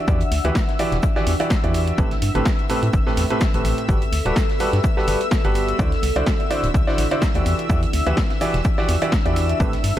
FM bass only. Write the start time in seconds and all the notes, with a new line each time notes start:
0.08 E2
0.32 D2
0.45 D2
0.92 E1
1.27 E2
1.64 E2
1.98 A1
2.22 G2
2.35 G1
2.83 A2
2.93 G1
3.17 E2
3.54 A1
3.65 A1
3.89 G1
4.12 D2
4.26 D1
4.73 G2
5.08 G1
5.45 G1
5.79 D2
6.03 C2
6.16 C2
6.64 D1
6.74 C2
6.98 A1
7.35 D2
7.46 E2
7.70 E2
7.94 D2
8.07 D2
8.54 E1
8.89 E2
9.26 E2
9.60 A1
9.84 G2